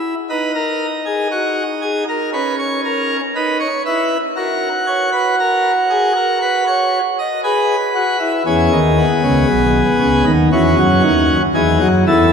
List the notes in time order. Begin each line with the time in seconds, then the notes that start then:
Already playing: E4
0.30 D#4 B4
0.55 A#4
1.06 G#4
1.31 F#4
1.82 G#4
2.09 A#4
2.33 C#4 B4
2.59 C#5
2.85 A#4
3.36 D#4 B4
3.60 C#5
3.86 E4 B4
4.37 F#4 A#4
4.87 C#5
5.12 B4
5.40 A#4
5.90 G#4
6.16 A#4
6.42 B4
6.67 C#5
7.19 D#5
7.44 G#4 B4
7.95 F#4
8.20 E4
8.46 E2 E3 C#4 G#4
8.72 D#2 D#3
8.98 B3
9.23 C#2 C#3
9.49 B1 B2
9.99 C#2 C#3
10.26 D#2 D#3
10.52 E2 E3 C#4 F#4
10.79 F#2 F#3
11.03 D#2 D#3
11.54 E2 E3 D#4 G#4
11.80 F#2 F#3
12.07 E2 E3 E4 A4